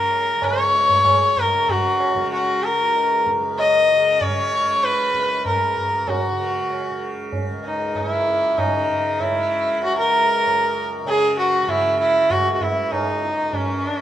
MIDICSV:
0, 0, Header, 1, 4, 480
1, 0, Start_track
1, 0, Tempo, 627615
1, 329, Time_signature, 3, 2, 24, 8
1, 5127, Tempo, 620476
1, 10781, End_track
2, 0, Start_track
2, 0, Title_t, "Sarangi"
2, 0, Program_c, 0, 110
2, 0, Note_on_c, 0, 70, 84
2, 344, Note_on_c, 0, 73, 98
2, 355, Note_off_c, 0, 70, 0
2, 1064, Note_on_c, 0, 70, 84
2, 1076, Note_off_c, 0, 73, 0
2, 1307, Note_on_c, 0, 66, 82
2, 1318, Note_off_c, 0, 70, 0
2, 1771, Note_off_c, 0, 66, 0
2, 1776, Note_on_c, 0, 66, 79
2, 2019, Note_on_c, 0, 70, 85
2, 2031, Note_off_c, 0, 66, 0
2, 2497, Note_off_c, 0, 70, 0
2, 2746, Note_on_c, 0, 75, 93
2, 3223, Note_on_c, 0, 73, 94
2, 3234, Note_off_c, 0, 75, 0
2, 3704, Note_on_c, 0, 71, 90
2, 3715, Note_off_c, 0, 73, 0
2, 4178, Note_off_c, 0, 71, 0
2, 4183, Note_on_c, 0, 70, 77
2, 4655, Note_on_c, 0, 66, 72
2, 4667, Note_off_c, 0, 70, 0
2, 5373, Note_off_c, 0, 66, 0
2, 5858, Note_on_c, 0, 63, 68
2, 6108, Note_off_c, 0, 63, 0
2, 6108, Note_on_c, 0, 63, 80
2, 6193, Note_off_c, 0, 63, 0
2, 6193, Note_on_c, 0, 64, 80
2, 6582, Note_on_c, 0, 63, 75
2, 6593, Note_off_c, 0, 64, 0
2, 7063, Note_on_c, 0, 64, 80
2, 7075, Note_off_c, 0, 63, 0
2, 7541, Note_off_c, 0, 64, 0
2, 7548, Note_on_c, 0, 66, 91
2, 7655, Note_off_c, 0, 66, 0
2, 7662, Note_on_c, 0, 70, 94
2, 8349, Note_off_c, 0, 70, 0
2, 8512, Note_on_c, 0, 68, 94
2, 8729, Note_off_c, 0, 68, 0
2, 8750, Note_on_c, 0, 66, 83
2, 8930, Note_off_c, 0, 66, 0
2, 8930, Note_on_c, 0, 66, 68
2, 8987, Note_on_c, 0, 64, 85
2, 8999, Note_off_c, 0, 66, 0
2, 9218, Note_off_c, 0, 64, 0
2, 9222, Note_on_c, 0, 64, 87
2, 9464, Note_on_c, 0, 66, 88
2, 9476, Note_off_c, 0, 64, 0
2, 9646, Note_off_c, 0, 66, 0
2, 9646, Note_on_c, 0, 66, 59
2, 9705, Note_on_c, 0, 64, 81
2, 9716, Note_off_c, 0, 66, 0
2, 9948, Note_on_c, 0, 63, 74
2, 9959, Note_off_c, 0, 64, 0
2, 10416, Note_on_c, 0, 61, 71
2, 10427, Note_off_c, 0, 63, 0
2, 10781, Note_off_c, 0, 61, 0
2, 10781, End_track
3, 0, Start_track
3, 0, Title_t, "Tanpura"
3, 0, Program_c, 1, 104
3, 0, Note_on_c, 1, 37, 56
3, 0, Note_on_c, 1, 42, 56
3, 0, Note_on_c, 1, 49, 57
3, 267, Note_off_c, 1, 37, 0
3, 270, Note_on_c, 1, 37, 58
3, 720, Note_off_c, 1, 42, 0
3, 720, Note_on_c, 1, 42, 55
3, 1172, Note_off_c, 1, 49, 0
3, 1175, Note_on_c, 1, 49, 59
3, 1634, Note_off_c, 1, 49, 0
3, 1634, Note_on_c, 1, 49, 57
3, 2094, Note_off_c, 1, 37, 0
3, 2097, Note_on_c, 1, 37, 60
3, 2540, Note_off_c, 1, 42, 0
3, 2543, Note_on_c, 1, 42, 60
3, 3007, Note_off_c, 1, 49, 0
3, 3007, Note_on_c, 1, 49, 54
3, 3451, Note_off_c, 1, 49, 0
3, 3451, Note_on_c, 1, 49, 57
3, 3911, Note_off_c, 1, 37, 0
3, 3914, Note_on_c, 1, 37, 53
3, 4371, Note_off_c, 1, 42, 0
3, 4374, Note_on_c, 1, 42, 53
3, 4833, Note_off_c, 1, 49, 0
3, 4833, Note_on_c, 1, 49, 53
3, 5280, Note_off_c, 1, 49, 0
3, 5280, Note_on_c, 1, 49, 53
3, 5735, Note_off_c, 1, 37, 0
3, 5739, Note_on_c, 1, 37, 57
3, 6195, Note_off_c, 1, 42, 0
3, 6198, Note_on_c, 1, 42, 58
3, 6657, Note_off_c, 1, 49, 0
3, 6657, Note_on_c, 1, 49, 58
3, 7114, Note_off_c, 1, 49, 0
3, 7114, Note_on_c, 1, 49, 57
3, 7567, Note_off_c, 1, 37, 0
3, 7570, Note_on_c, 1, 37, 56
3, 8033, Note_off_c, 1, 42, 0
3, 8036, Note_on_c, 1, 42, 62
3, 8490, Note_off_c, 1, 49, 0
3, 8490, Note_on_c, 1, 49, 59
3, 8938, Note_off_c, 1, 49, 0
3, 8938, Note_on_c, 1, 49, 58
3, 9393, Note_off_c, 1, 37, 0
3, 9396, Note_on_c, 1, 37, 57
3, 9842, Note_off_c, 1, 42, 0
3, 9846, Note_on_c, 1, 42, 55
3, 10295, Note_off_c, 1, 49, 0
3, 10295, Note_on_c, 1, 49, 55
3, 10404, Note_off_c, 1, 42, 0
3, 10404, Note_on_c, 1, 42, 55
3, 10781, Note_off_c, 1, 37, 0
3, 10781, Note_off_c, 1, 42, 0
3, 10781, Note_off_c, 1, 49, 0
3, 10781, End_track
4, 0, Start_track
4, 0, Title_t, "Tabla"
4, 83, Note_on_c, 9, 60, 57
4, 160, Note_off_c, 9, 60, 0
4, 320, Note_on_c, 9, 60, 73
4, 320, Note_on_c, 9, 64, 65
4, 397, Note_off_c, 9, 60, 0
4, 397, Note_off_c, 9, 64, 0
4, 564, Note_on_c, 9, 62, 59
4, 641, Note_off_c, 9, 62, 0
4, 684, Note_on_c, 9, 64, 53
4, 761, Note_off_c, 9, 64, 0
4, 800, Note_on_c, 9, 60, 66
4, 800, Note_on_c, 9, 64, 60
4, 877, Note_off_c, 9, 60, 0
4, 877, Note_off_c, 9, 64, 0
4, 1045, Note_on_c, 9, 64, 53
4, 1122, Note_off_c, 9, 64, 0
4, 1291, Note_on_c, 9, 63, 67
4, 1291, Note_on_c, 9, 64, 64
4, 1367, Note_off_c, 9, 63, 0
4, 1367, Note_off_c, 9, 64, 0
4, 1531, Note_on_c, 9, 60, 57
4, 1608, Note_off_c, 9, 60, 0
4, 1654, Note_on_c, 9, 37, 55
4, 1731, Note_off_c, 9, 37, 0
4, 1775, Note_on_c, 9, 60, 67
4, 1851, Note_off_c, 9, 60, 0
4, 2254, Note_on_c, 9, 62, 68
4, 2331, Note_off_c, 9, 62, 0
4, 2379, Note_on_c, 9, 62, 58
4, 2455, Note_off_c, 9, 62, 0
4, 2498, Note_on_c, 9, 37, 59
4, 2574, Note_off_c, 9, 37, 0
4, 2619, Note_on_c, 9, 62, 59
4, 2695, Note_off_c, 9, 62, 0
4, 2739, Note_on_c, 9, 63, 68
4, 2816, Note_off_c, 9, 63, 0
4, 3219, Note_on_c, 9, 60, 73
4, 3219, Note_on_c, 9, 64, 63
4, 3296, Note_off_c, 9, 60, 0
4, 3296, Note_off_c, 9, 64, 0
4, 3693, Note_on_c, 9, 62, 69
4, 3770, Note_off_c, 9, 62, 0
4, 3815, Note_on_c, 9, 62, 56
4, 3892, Note_off_c, 9, 62, 0
4, 3932, Note_on_c, 9, 37, 57
4, 4008, Note_off_c, 9, 37, 0
4, 4049, Note_on_c, 9, 62, 59
4, 4126, Note_off_c, 9, 62, 0
4, 4171, Note_on_c, 9, 60, 64
4, 4171, Note_on_c, 9, 64, 57
4, 4247, Note_off_c, 9, 60, 0
4, 4247, Note_off_c, 9, 64, 0
4, 4410, Note_on_c, 9, 64, 50
4, 4487, Note_off_c, 9, 64, 0
4, 4648, Note_on_c, 9, 63, 94
4, 4648, Note_on_c, 9, 64, 87
4, 4724, Note_off_c, 9, 63, 0
4, 4724, Note_off_c, 9, 64, 0
4, 5125, Note_on_c, 9, 60, 71
4, 5202, Note_off_c, 9, 60, 0
4, 5608, Note_on_c, 9, 63, 70
4, 5608, Note_on_c, 9, 64, 60
4, 5685, Note_off_c, 9, 63, 0
4, 5685, Note_off_c, 9, 64, 0
4, 5851, Note_on_c, 9, 60, 55
4, 5929, Note_off_c, 9, 60, 0
4, 6091, Note_on_c, 9, 60, 73
4, 6091, Note_on_c, 9, 64, 60
4, 6168, Note_off_c, 9, 60, 0
4, 6168, Note_off_c, 9, 64, 0
4, 6339, Note_on_c, 9, 62, 59
4, 6417, Note_off_c, 9, 62, 0
4, 6580, Note_on_c, 9, 60, 67
4, 6580, Note_on_c, 9, 64, 59
4, 6657, Note_off_c, 9, 60, 0
4, 6657, Note_off_c, 9, 64, 0
4, 6821, Note_on_c, 9, 64, 47
4, 6899, Note_off_c, 9, 64, 0
4, 7061, Note_on_c, 9, 63, 70
4, 7061, Note_on_c, 9, 64, 64
4, 7138, Note_off_c, 9, 63, 0
4, 7138, Note_off_c, 9, 64, 0
4, 7539, Note_on_c, 9, 60, 67
4, 7616, Note_off_c, 9, 60, 0
4, 8019, Note_on_c, 9, 60, 69
4, 8097, Note_off_c, 9, 60, 0
4, 8498, Note_on_c, 9, 63, 69
4, 8575, Note_off_c, 9, 63, 0
4, 8976, Note_on_c, 9, 60, 74
4, 8976, Note_on_c, 9, 64, 65
4, 9053, Note_off_c, 9, 60, 0
4, 9053, Note_off_c, 9, 64, 0
4, 9457, Note_on_c, 9, 60, 68
4, 9457, Note_on_c, 9, 64, 58
4, 9535, Note_off_c, 9, 60, 0
4, 9535, Note_off_c, 9, 64, 0
4, 9695, Note_on_c, 9, 64, 51
4, 9772, Note_off_c, 9, 64, 0
4, 9935, Note_on_c, 9, 60, 64
4, 9935, Note_on_c, 9, 64, 61
4, 10013, Note_off_c, 9, 60, 0
4, 10013, Note_off_c, 9, 64, 0
4, 10171, Note_on_c, 9, 62, 55
4, 10248, Note_off_c, 9, 62, 0
4, 10408, Note_on_c, 9, 63, 96
4, 10408, Note_on_c, 9, 64, 83
4, 10485, Note_off_c, 9, 63, 0
4, 10485, Note_off_c, 9, 64, 0
4, 10781, End_track
0, 0, End_of_file